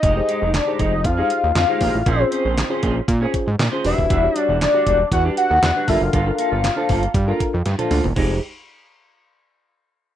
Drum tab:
CC |----------------|----------------|----------------|----------------|
HH |x-x-x-x-x-x-x-o-|x-x-x-x-x-x-x-o-|x-x-x-x-x-x-x-o-|x-x-x-oxx-x-xxo-|
CP |----x-------x---|----x-------x---|----x-------x---|----x-----------|
SD |----o-------o---|----o-------o---|----o-------o---|----o-------o---|
T1 |----------------|----------------|----------------|-------------o--|
T2 |----------------|----------------|----------------|--------------o-|
FT |----------------|----------------|----------------|---------------o|
BD |o-----o-o-----o-|o-----o-o-o----o|o-----o-o-----o-|o-----o-o-o-----|

CC |x---------------|
HH |----------------|
CP |----------------|
SD |----------------|
T1 |----------------|
T2 |----------------|
FT |----------------|
BD |o---------------|